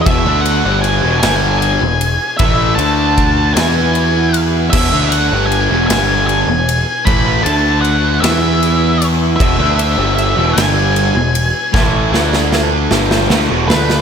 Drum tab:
CC |------------|------------|x-----------|------------|
RD |x-x-x-x-x-x-|x-x-x-x-x-x-|--x-x-x-x-x-|x-x-x-x-x-x-|
SD |------o-----|------o-----|------o-----|------o-----|
BD |o-----------|o---o-------|o-----------|o-----------|

CC |------------|------------|
RD |x-x-x-x-x-x-|------------|
SD |------o-----|o-ooo-ooo-oo|
BD |o-----------|o-----------|